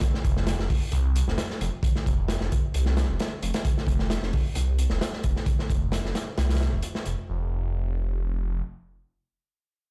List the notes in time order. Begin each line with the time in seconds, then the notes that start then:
0.01 kick, closed hi-hat
0.14 snare
0.24 F1, kick, closed hi-hat
0.37 snare
0.47 snare, closed hi-hat
0.59 F1, snare
0.70 kick, open hi-hat
0.92 C2, closed hi-hat
1.16 closed hi-hat
1.27 F1, snare
1.38 snare, closed hi-hat
1.50 snare
1.61 F1, closed hi-hat
1.83 kick, closed hi-hat
1.96 snare
2.06 F1, kick, closed hi-hat
2.28 snare, closed hi-hat
2.41 F1, snare
2.52 kick, closed hi-hat
2.74 C2, closed hi-hat
2.86 snare
2.97 snare, closed hi-hat
3.09 F1
3.19 snare, closed hi-hat
3.42 F1, closed hi-hat
3.54 snare, closed hi-hat
3.65 kick, closed hi-hat
3.78 snare
3.87 F1, kick, closed hi-hat
3.99 snare
4.10 snare, closed hi-hat
4.23 F1, snare
4.33 kick, open hi-hat
4.55 C2, closed hi-hat
4.79 closed hi-hat
4.90 F1, snare
5.01 snare, closed hi-hat
5.13 snare
5.23 F1, kick, closed hi-hat
5.36 snare
5.46 kick, closed hi-hat
5.59 snare
5.70 F1, kick, closed hi-hat
5.92 snare, closed hi-hat
6.04 F1, snare
6.15 snare, closed hi-hat
6.38 C2, snare, closed hi-hat
6.49 snare, closed hi-hat
6.55 snare, closed hi-hat
6.61 snare, closed hi-hat
6.72 F1
6.82 closed hi-hat
6.95 snare
7.05 F1, closed hi-hat
7.29 F1